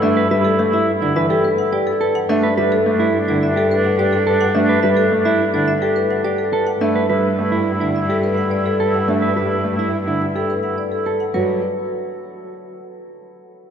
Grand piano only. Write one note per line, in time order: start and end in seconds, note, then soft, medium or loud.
0.02 0.20 A3 medium
0.31 0.49 G3 medium
0.59 0.77 A3 medium
1.02 1.20 D3 medium
1.16 1.34 E3 medium
2.29 2.47 A3 medium
2.58 2.75 G3 medium
2.86 3.04 A3 medium
3.29 3.46 D3 medium
4.55 4.73 A3 medium
4.84 5.02 G3 medium
5.12 5.30 A3 medium
5.54 5.72 D3 medium
6.81 7.00 A3 medium
7.10 7.28 G3 medium
7.39 7.57 A3 medium
7.81 7.99 D3 medium
9.08 9.26 A3 medium
9.36 9.54 G3 soft
9.64 9.83 A3 soft
10.06 10.25 D3 soft
11.34 11.61 F#3 medium